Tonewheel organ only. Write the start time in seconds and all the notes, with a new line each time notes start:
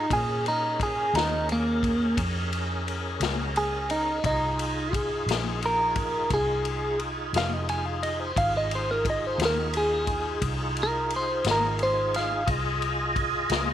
0.12 C#4 G#4 A#4
4.25 D#4 F4 G#4
8.36 D#4 F4 G#4
12.46 F4 G#4 D#5